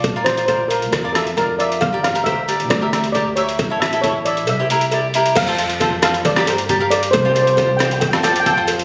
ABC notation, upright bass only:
X:1
M:4/4
L:1/8
Q:1/4=135
K:F
V:1 name="Upright bass" clef=bass
B,,,4 F,,4 | G,,,4 D,,4 | A,,,4 C,,4 | F,,4 G,,4 |
C,,4 F,,4 |]